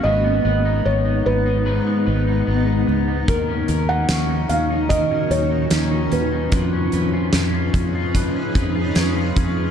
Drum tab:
HH |--------|xxxxxxxx|xxxxxxxx|
SD |--------|--o---o-|--o---o-|
BD |--------|o---o---|o--ooo-o|